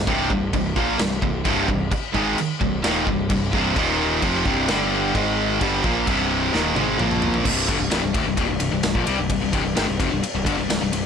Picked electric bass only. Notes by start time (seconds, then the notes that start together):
0.07 C1
0.30 C1
0.53 C1
0.76 A#1
0.99 C1
1.22 C1
1.45 C1
1.68 C1
2.15 G#1
2.38 muted picked electric bass stroke
2.61 C1
2.84 D#1
3.06 C1
3.30 C1
3.53 C1
3.76 D#1
4.22 F1
4.45 C1
4.69 G1
5.15 G#1
5.61 G1
5.84 A#1
6.07 C1
6.54 D#1
6.77 G#1
6.99 A#1
7.45 C1
7.68 G1
7.80 C1
7.92 C1
8.03 C1
8.14 D1
8.26 C1
8.37 D#1
8.48 C1
8.60 C1
8.72 C1
8.84 C1
8.95 A#1
9.07 C2
9.19 C1
9.29 C1
9.41 C1
9.53 C1
9.65 C1
9.77 G#1
9.89 C1
10.00 F1
10.12 C1
10.24 muted picked electric bass stroke
10.35 C1
10.46 G1
10.57 C1
10.69 C1
10.81 C1
10.92 C1